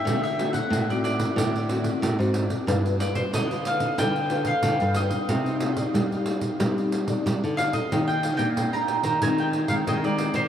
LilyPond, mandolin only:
\new Staff \with { instrumentName = "Mandolin" } { \time 4/4 \key c \minor \tempo 4 = 92 e''16 e''8 fis''8 d''16 d''4. r4 | r8 d''16 c''16 ees''8 f''8 g''8. f''8. ees''8~ | ees''2. r8 f''16 ees''16~ | \key ees \major ees''16 g''8 g''8 bes''8 bes''16 aes''16 g''8 f''16 ees''16 d''8 c''16 | }